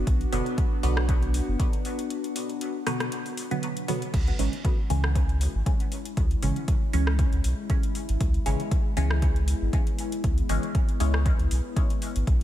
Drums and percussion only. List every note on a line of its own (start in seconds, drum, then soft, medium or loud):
0.07 kick loud
0.07 closed hi-hat medium
0.21 closed hi-hat soft
0.33 open hi-hat medium
0.46 closed hi-hat soft
0.58 kick loud
0.58 closed hi-hat medium
0.83 open hi-hat medium
0.97 cross-stick medium
1.09 kick loud
1.09 closed hi-hat medium
1.22 closed hi-hat soft
1.34 open hi-hat medium
1.60 kick loud
1.60 closed hi-hat medium
1.73 closed hi-hat soft
1.85 open hi-hat medium
1.99 closed hi-hat soft
2.10 closed hi-hat medium
2.24 closed hi-hat soft
2.36 open hi-hat medium
2.50 closed hi-hat soft
2.61 closed hi-hat medium
2.87 cross-stick medium
2.87 open hi-hat medium
3.00 cross-stick medium
3.00 closed hi-hat soft
3.12 closed hi-hat medium
3.26 open hi-hat soft
3.37 open hi-hat medium
3.51 closed hi-hat soft
3.63 closed hi-hat medium
3.77 closed hi-hat soft
3.88 open hi-hat medium
4.02 closed hi-hat soft
4.14 kick loud
4.14 closed hi-hat medium
4.14 crash loud
4.28 closed hi-hat soft
4.39 open hi-hat medium
4.53 closed hi-hat soft
4.65 kick loud
4.65 closed hi-hat medium
4.90 open hi-hat medium
5.04 cross-stick medium
5.15 kick loud
5.15 closed hi-hat medium
5.29 closed hi-hat soft
5.41 open hi-hat medium
5.66 kick loud
5.66 closed hi-hat medium
5.80 closed hi-hat soft
5.92 open hi-hat medium
6.05 closed hi-hat soft
6.17 kick loud
6.17 closed hi-hat medium
6.31 closed hi-hat soft
6.43 open hi-hat medium
6.56 closed hi-hat soft
6.68 kick loud
6.68 closed hi-hat medium
6.93 open hi-hat medium
7.07 cross-stick medium
7.19 kick loud
7.19 closed hi-hat medium
7.33 closed hi-hat soft
7.44 open hi-hat medium
7.70 kick loud
7.70 closed hi-hat medium
7.83 closed hi-hat soft
7.95 open hi-hat medium
8.09 closed hi-hat soft
8.21 kick loud
8.21 closed hi-hat medium
8.34 closed hi-hat soft
8.46 open hi-hat medium
8.60 closed hi-hat soft
8.71 kick loud
8.71 closed hi-hat medium
8.97 open hi-hat medium
9.11 cross-stick medium
9.22 kick loud
9.22 closed hi-hat medium
9.36 closed hi-hat soft
9.48 open hi-hat medium
9.73 kick loud
9.73 closed hi-hat medium
9.87 closed hi-hat soft
9.99 open hi-hat medium
10.12 closed hi-hat soft
10.24 kick loud
10.24 closed hi-hat medium
10.38 closed hi-hat soft
10.49 open hi-hat medium
10.63 closed hi-hat soft
10.75 kick loud
10.75 closed hi-hat medium
10.89 closed hi-hat soft
11.00 open hi-hat medium
11.14 cross-stick medium
11.26 kick loud
11.26 closed hi-hat medium
11.39 closed hi-hat soft
11.51 open hi-hat medium
11.76 kick loud
11.76 closed hi-hat medium
11.90 closed hi-hat soft
12.02 open hi-hat medium
12.16 closed hi-hat soft
12.27 kick loud
12.27 closed hi-hat medium